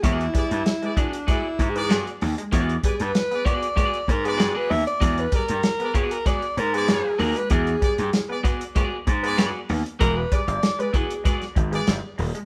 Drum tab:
HH |xxxxxxxxx-xxxxox|xxxxxxxxxxxxx-ox|xxxxxxxxxxxxx-ox|xxxxx-xxx-xxx-ox|
SD |----o-------o---|----o-------o---|----o-------o---|----o-------o---|
BD |o-o---o-o-o-----|o-o---o-o-o-----|o-o---o-o-------|o-o---o-o-o-----|

HH |x-xxxxxxxxxxx-ox|
SD |----o----o--o---|
BD |o-o---o-o-o-----|